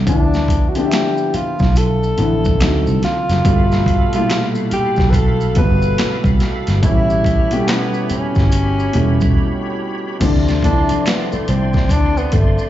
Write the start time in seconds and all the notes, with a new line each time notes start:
0.06 D2 D3 F3 B3 D4, kick, closed hi-hat, maracas
0.10 E4
0.34 snare, maracas
0.48 kick, closed hi-hat
0.68 F#4
0.75 D3 F3 B3 G4, closed hi-hat, maracas
0.79 D4
0.85 E5
0.91 finger snap, snare, closed hi-hat, maracas
1.17 maracas
1.34 F4, muted picked electric bass stroke, closed hi-hat, maracas
1.59 B1, kick, snare, maracas
1.76 A4, closed hi-hat, maracas
2.03 maracas
2.17 A1 D3 F3 B3, closed hi-hat
2.21 E4
2.45 kick, maracas
2.59 D2 D3 F#3 C4, finger snap, snare, closed hi-hat, maracas
2.63 D#4
2.87 C2, maracas
3.02 F4, snare, closed hi-hat, maracas
3.29 F#1, snare, closed hi-hat, maracas
3.44 G1 B2 G3 A3 A4 F5 B5, kick, closed hi-hat, maracas
3.48 F4
3.72 snare, maracas
3.86 kick, closed hi-hat
4.13 A#2 G3 A3 F4, closed hi-hat, maracas
4.17 B2 F4
4.30 finger snap, snare, closed hi-hat, maracas
4.55 maracas
4.71 G4, muted picked electric bass stroke, closed hi-hat, maracas
4.96 B1, kick, snare, maracas
5.10 B4, kick, maracas
5.14 A4, closed hi-hat
5.41 maracas
5.55 G1 B2 G3 A3 B4, kick, closed hi-hat
5.60 B3
5.82 maracas
5.98 finger snap, muted picked electric bass stroke, snare, closed hi-hat, maracas
6.24 C2, kick, maracas
6.40 snare, closed hi-hat, maracas
6.67 G1, snare, closed hi-hat, maracas
6.82 A1 B2 G3 A3 E4 G4 C#5 B5, kick, closed hi-hat, maracas
6.86 C#4
7.10 maracas
7.24 kick, closed hi-hat
7.51 B2 G3 A3 G4, closed hi-hat, maracas
7.55 B3
7.62 C#4
7.68 B3, finger snap, snare, closed hi-hat, maracas
7.94 maracas
8.10 C#4, muted picked electric bass stroke, closed hi-hat, maracas
8.35 G1, kick, snare, maracas
8.52 closed hi-hat, maracas
8.79 maracas
8.93 E1 B2 G3 A3, closed hi-hat
8.97 C#4
9.21 kick, maracas
10.20 D2 C3 F3 A3 D5 C6, kick, closed hi-hat, crash, maracas
10.24 D4
10.48 snare, maracas
10.62 C3 F3 A3 D4, kick, closed hi-hat
10.66 E4
10.89 muted picked electric bass stroke, closed hi-hat, maracas
11.06 B3, finger snap, snare, closed hi-hat, maracas
11.32 A3, muted picked electric bass stroke, maracas
11.48 C2 C4, closed hi-hat
11.73 kick, snare, maracas
11.89 D2 D4, kick, closed hi-hat, maracas
12.17 B3, maracas
12.32 G1 A3, kick, closed hi-hat, maracas
12.58 maracas